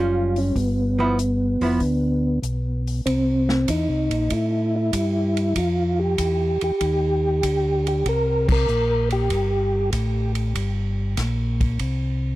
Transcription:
0.00 0.52 F#1 medium
0.00 0.56 G3 medium
0.00 0.56 C#4 medium
0.00 0.40 F4 loud
0.00 0.57 F4 medium
0.36 0.57 C#4 medium
0.36 open hi-hat soft
0.56 1.57 G1 medium
0.56 2.40 B3 medium
0.56 kick soft
0.56 open hi-hat soft
0.99 1.16 F3 medium
0.99 1.17 B3 medium
0.99 1.17 E4 medium
1.19 closed hi-hat medium
1.61 1.79 F1 medium
1.61 1.79 F3 medium
1.61 1.80 B3 medium
1.61 1.80 E4 medium
1.61 open hi-hat soft
1.80 2.39 D2 medium
1.80 kick soft
1.80 open hi-hat soft
2.42 3.01 B1 medium
2.42 closed hi-hat medium
2.87 open hi-hat soft
3.06 3.66 C2 medium
3.06 3.70 C4 medium
3.06 kick soft
3.06 ride medium
3.49 snare medium
3.68 3.89 E2 medium
3.68 4.34 D#4 medium
3.68 kick soft
3.68 hi-hat pedal soft
3.68 ride medium
3.89 4.10 C2 medium
4.10 4.29 A#1 medium
4.10 ride soft
4.30 4.91 A2 medium
4.30 4.75 E4 medium
4.30 kick soft
4.30 ride medium
4.76 5.60 E4 medium
4.93 5.54 G2 medium
4.93 kick soft
4.93 hi-hat pedal medium
4.93 ride medium
5.37 ride soft
5.56 6.16 F2 medium
5.56 6.01 F4 medium
5.56 kick soft
5.56 ride medium
5.99 6.63 G4 medium
6.18 6.58 E2 medium
6.18 kick soft
6.18 hi-hat pedal medium
6.18 ride medium
6.61 6.72 E2 soft
6.61 7.87 G4 loud
6.61 ride soft
6.81 7.42 D#2 medium
6.81 kick soft
6.81 ride medium
7.43 8.04 D2 medium
7.43 kick soft
7.43 hi-hat pedal soft
7.43 ride medium
7.87 8.08 G4 medium
7.87 ride soft
8.06 8.66 C2 medium
8.06 8.47 A#4 loud
8.06 kick soft
8.06 ride medium
8.49 9.09 A#4 loud
8.49 kick medium
8.49 crash medium
8.68 9.29 A#1 medium
8.68 hi-hat pedal soft
9.10 9.90 G4 loud
9.10 ride soft
9.30 9.91 G1 medium
9.30 kick soft
9.30 ride medium
9.93 10.54 A1 medium
9.93 kick soft
9.93 hi-hat pedal medium
9.93 ride medium
10.35 ride soft
10.55 11.16 G1 medium
10.55 kick soft
10.55 ride medium
11.17 11.79 A#1 medium
11.17 kick soft
11.17 snare soft
11.17 hi-hat pedal medium
11.17 ride medium
11.61 kick medium
11.61 ride soft
11.79 12.36 C2 medium
11.79 kick soft
11.79 ride medium

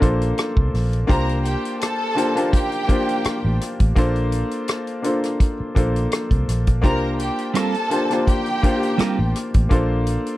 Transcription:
0.00 0.31 A#1 medium
0.00 1.07 A#3 medium
0.00 1.08 D4 medium
0.00 1.08 F4 medium
0.00 0.02 A4 medium
0.00 0.74 A4 medium
0.00 0.03 C5 loud
0.00 0.75 C5 medium
0.00 kick medium
0.00 closed hi-hat medium
0.21 closed hi-hat soft
0.38 cross-stick medium
0.38 closed hi-hat medium
0.57 0.71 C2 medium
0.57 kick medium
0.74 1.03 A#1 medium
0.74 cross-stick soft
0.74 open hi-hat soft
0.93 closed hi-hat medium
1.07 1.55 C2 medium
1.07 1.81 A#3 medium
1.07 1.81 D4 medium
1.07 1.81 F4 medium
1.07 1.82 G4 medium
1.07 1.38 A#4 medium
1.07 1.82 C5 loud
1.07 1.38 A#5 loud
1.07 kick loud
1.07 closed hi-hat medium
1.29 closed hi-hat soft
1.45 1.74 G4 medium
1.45 1.74 G5 medium
1.45 closed hi-hat medium
1.65 closed hi-hat soft
1.81 2.49 A4 loud
1.81 2.49 A5 medium
1.81 cross-stick medium
1.81 closed hi-hat medium
2.15 2.29 A#3 medium
2.15 2.29 D4 medium
2.15 2.30 F4 medium
2.15 2.30 G4 medium
2.15 2.31 C5 medium
2.15 closed hi-hat medium
2.35 2.72 A#3 medium
2.35 2.72 D4 medium
2.35 2.73 F4 medium
2.35 2.73 G4 medium
2.35 2.73 C5 medium
2.35 closed hi-hat soft
2.53 3.57 G4 medium
2.53 3.57 G5 loud
2.53 kick medium
2.53 closed hi-hat medium
2.72 closed hi-hat soft
2.88 3.61 A#3 medium
2.88 3.61 D4 medium
2.88 3.62 F4 medium
2.88 3.62 G4 medium
2.88 3.62 C5 medium
2.88 kick medium
2.88 closed hi-hat medium
3.09 closed hi-hat soft
3.24 muted fingered electric bass stroke soft
3.24 cross-stick medium
3.24 closed hi-hat medium
3.45 3.58 A1 medium
3.61 cross-stick soft
3.61 closed hi-hat medium
3.80 3.94 A1 medium
3.80 kick medium
3.80 closed hi-hat medium
3.95 4.42 A#1 medium
3.95 4.69 A#3 medium
3.95 4.69 D4 medium
3.95 4.69 F4 medium
3.95 4.70 A4 medium
3.95 4.70 C5 loud
3.95 kick loud
3.95 closed hi-hat medium
4.16 closed hi-hat soft
4.32 closed hi-hat medium
4.51 closed hi-hat soft
4.68 cross-stick medium
4.68 closed hi-hat medium
4.87 closed hi-hat soft
5.02 5.53 A#3 medium
5.02 5.53 D4 medium
5.02 5.54 F4 medium
5.02 5.54 A4 medium
5.02 5.54 C5 medium
5.02 closed hi-hat medium
5.24 cross-stick soft
5.24 closed hi-hat soft
5.40 kick medium
5.40 closed hi-hat medium
5.60 muted fingered electric bass stroke soft
5.75 6.06 A#1 medium
5.75 6.48 A#3 medium
5.75 6.48 D4 medium
5.75 6.49 F4 medium
5.75 6.49 A4 medium
5.75 6.50 C5 medium
5.75 kick medium
5.75 closed hi-hat medium
5.96 closed hi-hat soft
6.12 cross-stick medium
6.12 closed hi-hat medium
6.31 6.45 C2 medium
6.31 kick medium
6.31 closed hi-hat soft
6.48 6.84 A#1 medium
6.48 cross-stick soft
6.48 closed hi-hat medium
6.67 kick medium
6.67 closed hi-hat medium
6.82 7.29 C2 medium
6.82 7.55 A#3 medium
6.82 7.56 D4 medium
6.82 7.56 F4 medium
6.82 7.57 G4 medium
6.82 7.12 A#4 loud
6.82 7.57 C5 medium
6.82 7.13 A#5 loud
6.82 kick loud
6.82 closed hi-hat medium
7.19 7.49 G4 medium
7.19 7.49 G5 medium
7.19 closed hi-hat medium
7.38 closed hi-hat soft
7.54 7.74 G3 medium
7.54 7.74 C4 medium
7.54 7.75 F4 medium
7.54 8.23 A4 medium
7.54 7.75 A#4 medium
7.54 8.23 A5 loud
7.54 cross-stick medium
7.54 closed hi-hat medium
7.74 closed hi-hat soft
7.90 8.04 A#3 medium
7.90 8.04 D4 medium
7.90 8.04 F4 medium
7.90 8.05 G4 medium
7.90 8.05 C5 medium
7.90 closed hi-hat medium
8.10 8.47 A#3 medium
8.10 8.47 D4 medium
8.10 8.48 F4 medium
8.10 8.48 G4 medium
8.10 8.48 C5 medium
8.10 cross-stick soft
8.10 closed hi-hat soft
8.27 9.31 G4 medium
8.27 9.31 G5 loud
8.27 kick medium
8.27 closed hi-hat medium
8.46 closed hi-hat soft
8.62 9.36 A#3 medium
8.62 9.36 D4 medium
8.62 9.36 F4 medium
8.62 9.37 G4 medium
8.62 9.37 C5 medium
8.62 kick medium
8.62 closed hi-hat medium
8.83 closed hi-hat soft
8.98 9.18 G3 medium
8.98 9.18 C4 medium
8.98 9.18 F4 medium
8.98 9.19 A#4 medium
8.98 muted fingered electric bass stroke soft
8.98 cross-stick medium
8.98 closed hi-hat medium
9.19 9.32 A1 medium
9.36 cross-stick soft
9.36 closed hi-hat medium
9.54 9.68 A1 medium
9.54 kick medium
9.54 closed hi-hat medium
9.69 10.16 A#1 medium
9.69 10.37 A#3 medium
9.69 10.37 D4 medium
9.69 10.37 F4 medium
9.69 10.37 A4 medium
9.69 10.37 C5 loud
9.69 kick loud
9.69 closed hi-hat medium
10.07 closed hi-hat medium
10.26 closed hi-hat soft

